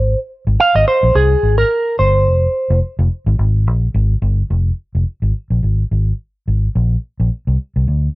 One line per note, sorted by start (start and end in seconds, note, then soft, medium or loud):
0.00 0.14 G#1 loud
0.00 0.18 C5 medium
0.47 0.55 G#1 loud
0.60 0.74 F5 loud
0.75 0.83 G#1 medium
0.75 0.87 D#5 loud
0.88 1.16 C5 medium
1.03 1.11 A#1 loud
1.15 1.34 C2 medium
1.15 1.56 G#4 medium
1.43 1.62 G#1 medium
1.58 1.96 A#4 loud
1.99 2.27 G1 medium
1.99 2.79 C5 medium
2.27 2.46 F1 loud
2.70 2.79 F1 loud
2.99 3.07 F1 loud
3.26 3.35 G#1 loud
3.39 3.67 G#1 loud
3.67 3.86 A#1 medium
3.94 4.14 G#1 loud
4.22 4.42 G1 loud
4.50 4.70 F1 loud
4.95 5.03 F1 medium
5.22 5.31 G#1 medium
5.50 5.59 A#1 medium
5.63 5.82 G#1 medium
5.91 6.11 G#1 medium
6.48 6.67 G#1 medium
6.75 6.95 A#1 loud
7.20 7.28 A#1 medium
7.47 7.56 C2 medium
7.76 7.84 C2 medium
7.88 8.07 D2 medium